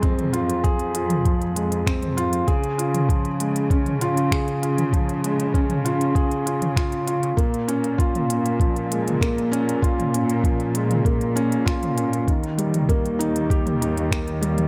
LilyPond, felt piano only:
\new Staff \with { instrumentName = "Felt piano" } { \time 4/4 \key bes \dorian \tempo 4 = 98 c'8 f'8 aes'8 f'8 f8 aes8 c'8 f'8 | aes'8 f'8 f8 aes8 des'8 f'8 aes'8 f'8 | f8 aes8 des'8 f'8 aes'8 f'8 f'8 f'8 | bes8 des'8 f'8 des'8 f8 aes8 bes8 des'8 |
f'8 des'8 f8 aes8 bes8 des'8 f'8 des'8 | ees8 g8 bes8 ees'8 g'8 ees'8 ees8 g8 | }